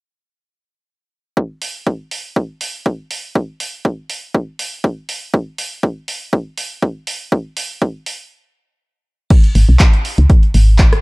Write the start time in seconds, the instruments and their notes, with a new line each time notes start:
1.37 kick
1.62 open hi-hat
1.87 kick
2.11 open hi-hat
2.36 kick
2.61 open hi-hat
2.86 kick
3.11 open hi-hat
3.35 kick
3.60 open hi-hat
3.85 kick
4.10 open hi-hat
4.34 kick
4.59 open hi-hat
4.84 kick
5.09 open hi-hat
5.34 kick
5.58 open hi-hat
5.83 kick
6.08 open hi-hat
6.33 kick
6.58 open hi-hat
6.82 kick
7.07 open hi-hat
7.32 kick
7.57 open hi-hat
7.82 kick
8.06 open hi-hat
9.30 kick, closed hi-hat, crash
9.44 closed hi-hat
9.55 fm bass G#1, open hi-hat
9.69 fm bass B1
9.79 kick, clap, closed hi-hat
9.93 closed hi-hat
10.05 open hi-hat
10.18 fm bass C#2, closed hi-hat
10.30 kick, closed hi-hat
10.43 closed hi-hat
10.54 fm bass G#1, open hi-hat
10.79 kick, clap, closed hi-hat
10.93 cross-stick, closed hi-hat